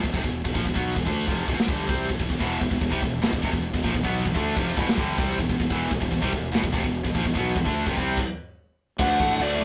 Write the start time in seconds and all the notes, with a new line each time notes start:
0.04 E1 E2 B2, kick
0.14 F1 F2 C3, kick
0.24 E1 E2 B2, kick
0.35 open hi-hat
0.45 E1 E2 B2, kick
0.54 A#1 A#2 F3, kick
0.65 E1 E2 B2, kick
0.74 B1 B2 F#3 B3, kick, open hi-hat
0.96 E1 E2 B2, kick
1.05 D2 D3 A3 D4, kick
1.17 open hi-hat
1.25 F1 F2 C3 F3, kick
1.47 E1 E2 B2, kick
1.58 muted distorted electric guitar stroke, muted fingered electric bass stroke, snare, open hi-hat
1.68 G1 G2 D3 G3, kick
1.89 C2 C3 G3 C4, kick
2.00 open hi-hat
2.10 E1 E2 B2, kick
2.19 E1 E2 B2, kick
2.30 E1 E2 B2, kick
2.40 E1 E2 B2 E3, kick, open hi-hat
2.61 E1 E2 B2, kick
2.71 E1 E2 B2, kick
2.81 E1 E2 B2, kick, open hi-hat
2.91 C2 C3 G3, kick
3.02 E1 E2 B2, kick
3.22 E1 E2 B2, snare, open hi-hat
3.32 E1 E2 B2, kick
3.42 F1 F2 C3, kick
3.53 E1 E2 B2, kick
3.64 open hi-hat
3.73 E1 E2 B2, kick
3.83 A#1 A#2 F3, kick
3.94 E1 E2 B2, kick
4.04 B1 B2 F#3 B3, kick, open hi-hat
4.25 E1 E2 B2, kick
4.35 D2 D3 A3 D4, kick
4.47 open hi-hat
4.55 F1 F2 C3 F3, kick
4.76 E1 E2 B2, kick
4.87 muted fingered electric bass stroke, muted distorted electric guitar stroke, snare, open hi-hat
4.97 G1 G2 D3 G3, kick
5.18 C2 C3 G3 C4, kick
5.28 open hi-hat
5.38 E1 E2 B2, kick
5.49 E1 E2 B2, kick
5.60 E1 E2 B2, kick
5.70 E1 E2 B2 E3, kick, open hi-hat
5.91 E1 E2 B2, kick
6.01 E1 E2 B2, kick
6.11 E1 E2 B2, kick, open hi-hat
6.22 C2 C3 G3, kick
6.33 E1 E2 B2, kick
6.52 E1 E2 B2, snare, open hi-hat
6.62 E1 E2 B2, kick
6.73 F1 F2 C3, kick
6.77 C3
6.83 E1 E2 B2, kick
6.94 open hi-hat
7.04 E1 E2 B2, kick
7.15 A#1 A#2 F3, kick
7.25 E1 E2 B2, kick
7.35 B1 B2 F#3 B3, kick, open hi-hat
7.55 E1 E2 B2, kick
7.65 D2 D3 A3 D4, kick
7.77 open hi-hat
7.86 F1 F2 C3, kick
7.96 C2 C3 G3 C4, kick
8.17 kick, crash
8.99 D2 D3 F#3 A3 F#5, kick, crash
9.03 D3 A3 D4
9.15 D3 A3
9.20 A1 D3 A3, kick
9.30 D3 A3
9.39 D2 D3 A3 D5, crash
9.46 D3 A3
9.53 D3 A3
9.61 D2